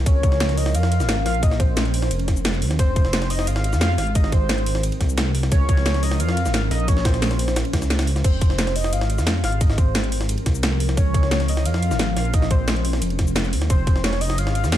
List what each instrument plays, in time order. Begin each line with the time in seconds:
Already playing: ambient pad F3 A#4
0.06 detuned saw bass C#2, ambient pad C#4, soft synth lead C#5, kick, closed hi-hat, ride, shaker
0.23 kick, closed hi-hat, ride, shaker
0.32 snare
0.40 snare, closed hi-hat, ride, shaker
0.49 snare, closed hi-hat
0.57 soft synth lead D#5, open hi-hat
0.66 snare
0.74 detuned saw bass F2, soft synth lead F5, closed hi-hat, ride, shaker
0.83 snare
0.92 closed hi-hat, ride
1.00 detuned saw bass G#1, snare, shaker
1.09 snare, closed hi-hat, ride, shaker
1.26 detuned saw bass A#1, soft synth lead F5, snare, open hi-hat, ride
1.34 closed hi-hat
1.43 ambient pad G#3 C5, soft synth lead D#5, kick, closed hi-hat, ride, shaker
1.51 snare
1.60 soft synth lead C5, kick, closed hi-hat, ride, shaker
1.77 snare, closed hi-hat, ride, shaker
1.85 closed hi-hat
1.94 open hi-hat, ride
2.02 snare
2.11 detuned saw bass F1, closed hi-hat, ride, shaker
2.19 ride
2.28 kick, snare, closed hi-hat, ride
2.36 shaker
2.45 snare, closed hi-hat, ride, shaker
2.54 snare, shaker
2.62 detuned saw bass D#2, open hi-hat, ride
2.71 snare, closed hi-hat
2.79 detuned saw bass F1, ambient pad D#4 G4 G#4, soft synth lead C5, kick, closed hi-hat, ride, shaker
2.96 kick, closed hi-hat, ride, shaker
3.05 snare
3.13 snare, closed hi-hat, ride, shaker
3.22 snare, closed hi-hat
3.30 soft synth lead D#5, open hi-hat
3.39 snare
3.47 detuned saw bass G#1, soft synth lead F5, closed hi-hat, ride, shaker
3.56 snare
3.64 closed hi-hat, ride
3.73 detuned saw bass F2, snare, shaker
3.81 soft synth lead F5, snare, closed hi-hat, ride, shaker
3.98 detuned saw bass G#1, ambient pad F3 C4 A#4, soft synth lead F5, snare, open hi-hat, ride
4.07 closed hi-hat
4.15 soft synth lead D#5, kick, closed hi-hat, ride, shaker
4.24 snare
4.32 soft synth lead C5, kick, closed hi-hat, ride, shaker
4.49 snare, closed hi-hat, ride, shaker
4.58 closed hi-hat
4.66 open hi-hat, ride
4.75 snare
4.83 closed hi-hat, ride, shaker
4.92 ride
5.01 detuned saw bass C2, kick, snare, closed hi-hat, ride
5.09 shaker
5.18 snare, closed hi-hat, ride, shaker
5.26 snare
5.35 open hi-hat, ride
5.43 snare, closed hi-hat
5.52 detuned saw bass C#2, ambient pad C#4, soft synth lead C#5, kick, closed hi-hat, ride, shaker
5.69 kick, closed hi-hat, ride, shaker
5.77 snare
5.86 snare, closed hi-hat, ride, shaker
5.94 snare, closed hi-hat
6.03 soft synth lead D#5, open hi-hat
6.11 snare
6.20 detuned saw bass F2, soft synth lead F5, closed hi-hat, ride, shaker
6.29 snare
6.37 closed hi-hat, ride
6.46 detuned saw bass G#1, snare, shaker
6.54 soft synth lead F5, snare, closed hi-hat, ride, shaker
6.71 detuned saw bass A#1, soft synth lead D#5, snare, open hi-hat, ride
6.80 closed hi-hat
6.88 ambient pad G#3 C5, soft synth lead C#5, kick, closed hi-hat, ride, shaker
6.97 snare
7.05 soft synth lead C5, kick, snare, closed hi-hat, ride, shaker
7.14 snare, closed hi-hat
7.22 snare, closed hi-hat, open hi-hat, shaker
7.31 snare, closed hi-hat
7.39 open hi-hat, ride
7.48 snare, shaker
7.56 snare, closed hi-hat, ride, shaker
7.65 ride
7.73 detuned saw bass C#2, kick, snare, closed hi-hat, ride
7.82 snare, shaker
7.90 snare, closed hi-hat, ride, shaker
7.99 snare, ride, shaker
8.07 open hi-hat, ride
8.16 snare, closed hi-hat
8.24 detuned saw bass F1, ambient pad D#4 G4 G#4, soft synth lead C5, kick, closed hi-hat, crash, ride, shaker
8.41 kick, closed hi-hat, ride, shaker
8.50 snare
8.59 snare, closed hi-hat, ride, shaker
8.67 snare, closed hi-hat
8.76 soft synth lead D#5, open hi-hat
8.84 snare
8.93 detuned saw bass G#1, soft synth lead F5, closed hi-hat, ride, shaker
9.01 snare
9.10 closed hi-hat, ride
9.18 detuned saw bass F2, snare, shaker
9.27 snare, closed hi-hat, ride, shaker
9.44 detuned saw bass G#1, ambient pad F3 C4 A#4, soft synth lead F5, snare, open hi-hat, ride
9.52 closed hi-hat
9.61 soft synth lead D#5, kick, closed hi-hat, ride, shaker
9.70 snare
9.78 soft synth lead C5, kick, closed hi-hat, ride, shaker
9.95 snare, closed hi-hat, ride, shaker
10.04 closed hi-hat
10.12 open hi-hat, ride
10.21 snare
10.29 closed hi-hat, ride, shaker
10.38 ride
10.46 detuned saw bass C2, kick, snare, closed hi-hat, ride
10.55 shaker
10.63 snare, closed hi-hat, ride, shaker
10.72 snare
10.80 open hi-hat, ride
10.89 snare, closed hi-hat
10.97 detuned saw bass C#2, ambient pad C#4 A#4, soft synth lead C#5, kick, closed hi-hat, ride, shaker
11.14 kick, closed hi-hat, ride, shaker
11.23 snare
11.31 snare, closed hi-hat, ride, shaker
11.40 snare, closed hi-hat
11.48 soft synth lead D#5, open hi-hat
11.57 snare
11.65 detuned saw bass F2, soft synth lead F5, closed hi-hat, ride, shaker
11.74 snare
11.82 closed hi-hat, ride
11.91 detuned saw bass G#1, snare, shaker
11.99 snare, closed hi-hat, ride, shaker
12.17 detuned saw bass A#1, soft synth lead F5, snare, open hi-hat, ride
12.25 closed hi-hat
12.33 ambient pad G#3 C5, soft synth lead D#5, kick, closed hi-hat, ride, shaker
12.42 snare
12.51 soft synth lead C5, kick, closed hi-hat, ride, shaker
12.68 snare, closed hi-hat, ride, shaker
12.76 closed hi-hat
12.85 open hi-hat, ride
12.93 snare
13.02 detuned saw bass F1, closed hi-hat, ride, shaker
13.10 ride
13.19 kick, snare, closed hi-hat, ride
13.27 shaker
13.36 snare, closed hi-hat, ride, shaker
13.44 snare, shaker
13.53 detuned saw bass D#2, open hi-hat, ride
13.61 snare, closed hi-hat
13.70 detuned saw bass F1, ambient pad D#4 G4 G#4, soft synth lead C5, kick, closed hi-hat, ride, shaker
13.87 kick, closed hi-hat, ride, shaker
13.96 snare
14.04 soft synth lead C#5, snare, closed hi-hat, ride, shaker
14.13 snare, closed hi-hat
14.21 soft synth lead D#5, open hi-hat
14.30 snare
14.38 detuned saw bass G#1, soft synth lead F5, closed hi-hat, ride, shaker
14.47 snare
14.55 closed hi-hat, ride
14.64 detuned saw bass F2, snare, shaker
14.72 soft synth lead F5, snare, closed hi-hat, ride, shaker